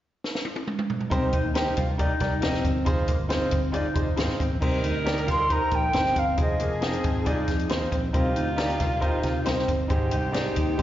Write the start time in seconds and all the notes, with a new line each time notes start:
0.24 snare
0.35 snare
0.45 high tom
0.56 high tom
0.68 mid tom
0.79 mid tom
0.90 floor tom
1.01 floor tom
1.10 C2 C3 C4 D#4 G4 A#4 C5, kick, closed hi-hat
1.33 D#4, kick, closed hi-hat
1.45 D#2
1.54 D#4 G4 A#4 C5, snare, closed hi-hat
1.77 C2 F4, kick, closed hi-hat
1.98 D#4 G4 A#4 D5, kick, closed hi-hat
2.20 C2 D#4 G4 A#4 D5, kick, snare, closed hi-hat
2.41 F1 C4 D#4 G4 A#4 D#5, snare, closed hi-hat
2.54 snare
2.65 G1, kick, closed hi-hat
2.85 F1 D#4 F4 G#4 C5, kick, closed hi-hat
3.08 A#3, kick, closed hi-hat
3.20 G1
3.29 C4 D#4 F4 G#4 C5, snare, closed hi-hat
3.51 G1, kick, closed hi-hat
3.72 D#4 F4 G#4 D5, closed hi-hat
3.94 F1 D#4 F4 G#4 C5, kick, closed hi-hat
4.16 G#1 C4 D#4 F4 G#4 C5, snare, closed hi-hat
4.29 snare
4.40 G#1 C4, kick, closed hi-hat
4.51 A#1
4.60 C2 C3 G3 C4 D#4 G4 A#4 C5, kick, crash
4.84 D2 D#4, closed hi-hat
5.04 D#4 G4 A#4 D5, snare, closed hi-hat
5.18 closed hi-hat
5.27 C2 F4 C6, kick, snare, closed hi-hat
5.49 D#4 G4 A#4 C5 A#5, kick, closed hi-hat
5.71 A#1 G5, kick, closed hi-hat
5.93 G1 C4 D#4 G4 A#4 C5, snare, closed hi-hat
6.05 snare
6.16 G1 F5, kick, closed hi-hat
6.37 F1 F3 D#4 F4 G#4 C5 D#5, kick, closed hi-hat
6.60 F1 A#3, closed hi-hat
6.81 C4 D#4 F4 G#4 D#5, snare, closed hi-hat
6.93 closed hi-hat
7.04 G#1, kick, closed hi-hat
7.25 C2 D#4 F4 G#4 D5, kick, closed hi-hat
7.48 F2, kick, snare, closed hi-hat
7.59 closed hi-hat
7.69 D#2 C4 D#4 F4 G#4 C5, snare, closed hi-hat
7.92 A#1 C4, kick, closed hi-hat
8.13 C2 C3 A#3 C4 D#4 F4 G4 A#4 C5, kick, closed hi-hat
8.36 D2 D#4, closed hi-hat
8.56 D#4 G4 A#4 D5, snare, closed hi-hat
8.70 closed hi-hat
8.80 C2 F4, kick, snare, closed hi-hat
9.00 G1 D#4 G4 A#4 C5, kick, closed hi-hat
9.23 C3, kick, snare, closed hi-hat
9.44 C2 C4 D#4 G4 A#4 C5, snare, closed hi-hat
9.59 snare
9.68 G1, kick, closed hi-hat
9.88 G#1 G#2 D#3 C4 D#4 G4 G#4 C5, kick, closed hi-hat
10.11 C2 D#4, closed hi-hat
10.32 D#4 G4 G#4 D5, snare, closed hi-hat
10.56 D#2, kick, closed hi-hat
10.77 C4 D#4 G4 G#4 C5, kick, closed hi-hat